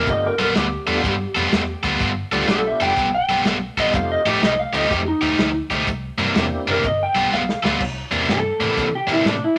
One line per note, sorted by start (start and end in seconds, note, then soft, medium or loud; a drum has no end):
0.06 0.28 G1 medium
0.06 0.35 A3 medium
0.06 0.36 B3 medium
0.06 0.36 D4 medium
0.06 0.36 F4 medium
0.06 0.36 G4 medium
0.06 0.24 D#5 medium
0.06 kick loud
0.06 closed hi-hat medium
0.27 0.41 A#4 medium
0.38 0.50 B1 medium
0.38 0.65 G3 medium
0.38 0.65 B3 medium
0.38 0.65 F4 medium
0.38 0.65 A4 medium
0.38 0.56 A#4 medium
0.38 snare soft
0.38 closed hi-hat medium
0.55 0.76 D2 medium
0.55 1.97 G4 medium
0.55 snare loud
0.55 closed hi-hat medium
0.86 0.98 E2 medium
0.86 1.14 G3 medium
0.86 1.02 A3 medium
0.86 1.02 B3 medium
0.86 1.13 B3 medium
0.86 1.02 D4 medium
0.86 1.02 F4 medium
0.86 1.13 F4 medium
0.86 1.13 A4 medium
0.86 1.02 A4 medium
0.86 closed hi-hat medium
1.03 1.25 G2 medium
1.03 kick loud
1.03 snare soft
1.03 closed hi-hat medium
1.35 1.47 F2 medium
1.35 1.62 G3 medium
1.35 1.62 B3 medium
1.35 1.62 F4 medium
1.35 1.61 A4 medium
1.35 snare soft
1.35 closed hi-hat medium
1.52 1.73 E2 medium
1.52 snare loud
1.52 closed hi-hat medium
1.83 1.95 D2 medium
1.83 2.10 G3 medium
1.83 2.10 B3 medium
1.83 2.10 F4 medium
1.83 2.10 A4 medium
1.83 kick medium
1.83 snare soft
1.83 closed hi-hat medium
2.00 2.22 G1 medium
2.00 kick loud
2.00 closed hi-hat medium
2.31 2.43 D2 medium
2.31 2.59 G3 medium
2.31 2.94 A3 medium
2.31 2.94 B3 medium
2.31 2.59 B3 medium
2.31 2.94 D4 medium
2.31 2.58 F4 medium
2.31 2.94 F4 medium
2.31 2.94 G4 medium
2.31 2.58 A4 medium
2.31 closed hi-hat medium
2.48 2.70 B1 medium
2.48 2.65 A4 medium
2.48 snare medium
2.48 closed hi-hat medium
2.67 2.82 E5 medium
2.80 2.92 F1 medium
2.80 3.08 G3 medium
2.80 3.07 B3 medium
2.80 3.07 F4 medium
2.80 3.07 A4 medium
2.80 3.13 G5 medium
2.80 closed hi-hat medium
2.97 3.18 B1 medium
2.97 kick medium
2.97 closed hi-hat medium
3.15 3.40 G5 loud
3.28 3.40 B1 medium
3.28 3.56 G3 medium
3.28 3.56 B3 medium
3.28 3.56 F4 medium
3.28 3.55 A4 medium
3.28 closed hi-hat medium
3.45 3.66 B1 medium
3.45 snare loud
3.45 closed hi-hat medium
3.77 3.88 B1 medium
3.77 3.95 G3 medium
3.77 3.94 B3 medium
3.77 3.94 F4 medium
3.77 3.94 A4 medium
3.77 3.94 D#5 loud
3.77 kick medium
3.77 closed hi-hat medium
3.92 4.15 F1 loud
3.92 4.22 A3 medium
3.92 4.22 C4 medium
3.92 4.22 D#4 medium
3.92 4.22 F4 medium
3.92 4.23 G4 medium
3.92 4.10 F5 medium
3.92 kick loud
3.92 closed hi-hat medium
4.12 4.26 D#5 medium
4.25 4.36 A1 medium
4.25 4.52 F3 medium
4.25 4.52 A3 medium
4.25 4.52 D#4 medium
4.25 4.52 G4 medium
4.25 4.42 G4 medium
4.25 closed hi-hat medium
4.42 4.63 C2 medium
4.42 4.59 D#5 medium
4.42 snare loud
4.42 closed hi-hat medium
4.59 4.74 F5 medium
4.73 4.84 D2 medium
4.73 5.00 F3 medium
4.73 4.88 A3 medium
4.73 5.00 A3 medium
4.73 4.88 C4 medium
4.73 4.88 D#4 medium
4.73 5.00 D#4 medium
4.73 4.89 F4 medium
4.73 5.00 G4 medium
4.73 4.89 G4 medium
4.73 4.90 D#5 medium
4.73 closed hi-hat medium
4.91 5.12 F2 medium
4.91 5.06 G4 medium
4.91 kick loud
4.91 closed hi-hat medium
5.08 5.54 D#4 medium
5.21 5.32 D#2 medium
5.21 5.49 F3 medium
5.21 5.48 A3 medium
5.21 5.48 D#4 medium
5.21 5.48 G4 medium
5.21 closed hi-hat medium
5.38 5.60 D2 medium
5.38 snare loud
5.38 closed hi-hat medium
5.70 5.81 D2 medium
5.70 5.88 F3 medium
5.70 5.87 A3 medium
5.70 5.87 D#4 medium
5.70 5.87 G4 medium
5.70 kick medium
5.70 snare soft
5.70 closed hi-hat medium
5.87 6.08 C2 medium
5.87 kick loud
5.87 closed hi-hat medium
6.18 6.30 G2 medium
6.18 6.45 C3 medium
6.18 6.45 E3 medium
6.18 6.44 A#3 medium
6.18 6.44 D4 medium
6.18 closed hi-hat medium
6.34 6.56 E2 medium
6.34 6.83 A#3 medium
6.34 6.83 C4 medium
6.34 6.83 D4 medium
6.34 6.84 E4 medium
6.34 6.83 G4 medium
6.34 snare loud
6.34 closed hi-hat medium
6.66 6.78 F#1 medium
6.66 6.84 C3 medium
6.66 6.84 E3 medium
6.66 6.84 A#3 medium
6.66 6.84 D4 medium
6.66 closed hi-hat medium
6.71 6.85 A#4 medium
6.83 7.05 G1 medium
6.83 7.00 D#5 medium
6.83 kick loud
6.83 closed hi-hat medium
7.03 7.32 G5 medium
7.15 7.26 B1 medium
7.15 7.42 G3 medium
7.15 7.42 B3 medium
7.15 7.41 F4 medium
7.15 7.41 A4 medium
7.15 closed hi-hat soft
7.31 7.52 B1 medium
7.31 7.79 F5 medium
7.31 snare medium
7.49 snare medium
7.63 7.74 D2 medium
7.63 7.81 G3 medium
7.63 7.80 B3 medium
7.63 7.80 F4 medium
7.63 7.80 A4 medium
7.63 snare loud
7.80 8.01 C2 medium
7.80 kick medium
7.80 crash loud
8.11 8.23 E2 medium
8.11 8.38 C3 medium
8.11 8.38 E3 medium
8.11 8.38 A#3 medium
8.11 8.38 D4 medium
8.11 closed hi-hat medium
8.28 8.49 G2 medium
8.28 8.92 A4 medium
8.28 snare medium
8.28 closed hi-hat medium
8.59 8.71 A2 medium
8.59 8.87 C3 medium
8.59 8.87 E3 medium
8.59 8.86 A#3 medium
8.59 8.86 D4 medium
8.59 closed hi-hat medium
8.77 8.98 C3 medium
8.77 kick medium
8.77 snare soft
8.77 closed hi-hat medium
8.95 9.10 G4 medium
9.07 9.19 A#2 medium
9.07 9.35 C3 medium
9.07 9.34 E3 medium
9.07 9.34 A#3 medium
9.07 9.34 D4 medium
9.07 closed hi-hat medium
9.12 9.26 E4 medium
9.24 9.46 A2 medium
9.24 9.42 D4 medium
9.24 snare medium
9.24 closed hi-hat medium
9.44 9.58 E4 medium